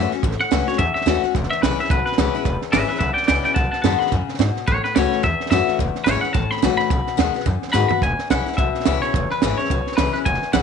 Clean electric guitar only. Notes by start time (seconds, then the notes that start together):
Already playing: E5
0.41 F#5
0.68 C#5
0.78 E5
0.94 E5
1.50 E5
1.62 B4
1.80 E5
1.91 B4
2.06 B4
2.72 B4 E5
2.88 B4 E5
2.99 B4 E5
3.13 D5 G5
3.27 D5 G5
3.44 D5 G5
3.54 F#5 A5
3.71 F#5 A5
3.82 F#5 A5
3.99 B5
4.68 C#5
4.84 B4
4.95 C#5
5.24 E5
5.51 E5
6.04 C#5
6.21 F#5
6.33 A5
6.51 B5
6.77 B5
7.73 B4 B5
7.89 B5
8.03 G#5
8.31 F#5
8.57 E5
9.02 C#5
9.32 B4
9.58 C#5
9.97 B4
10.13 B4
10.25 G#5
10.53 F#5